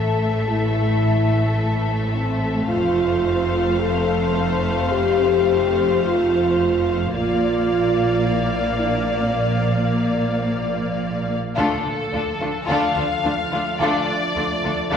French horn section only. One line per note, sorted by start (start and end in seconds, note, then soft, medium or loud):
0.00 0.46 A4 medium
0.49 1.44 E4 medium
1.61 2.14 E4 medium
2.15 2.70 C4 medium
2.69 3.80 F4 medium
3.80 4.91 A4 medium
4.92 6.03 G4 medium
6.02 7.11 F4 medium
7.13 8.22 F4 medium
8.24 8.80 E4 medium
8.80 9.21 D4 medium
9.22 9.36 C4 medium
9.37 11.27 A#3 medium
11.58 14.97 D4 medium
11.58 14.97 A4 medium